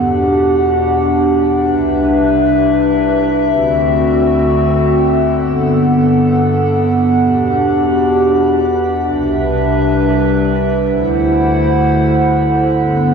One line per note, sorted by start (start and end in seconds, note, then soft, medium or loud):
0.00 1.65 E2 medium
0.00 1.65 B2 medium
0.00 3.48 D4 medium
0.00 1.65 G4 medium
0.00 1.65 F#5 medium
1.66 3.49 C2 medium
1.66 3.49 C3 medium
1.66 3.49 B4 medium
1.66 5.32 E5 medium
3.51 5.34 D2 medium
3.51 7.17 D3 medium
3.51 5.34 C4 medium
3.51 5.34 F#4 medium
5.36 7.19 G2 medium
5.36 7.19 B3 medium
5.36 7.19 A4 medium
5.36 9.01 F#5 medium
7.21 9.03 E2 medium
7.21 9.03 B2 medium
7.21 9.03 D4 medium
7.21 9.03 G4 medium
9.05 10.88 C2 medium
9.05 10.88 C3 medium
9.05 10.88 D4 medium
9.05 10.88 B4 medium
9.05 10.88 E5 medium
10.90 12.72 D2 medium
10.90 13.14 D3 medium
10.90 12.72 E4 medium
10.90 12.72 C5 medium
10.90 12.72 F#5 medium
12.74 13.14 G2 medium
12.74 13.14 B3 medium
12.74 13.14 A4 medium
12.74 13.14 F#5 medium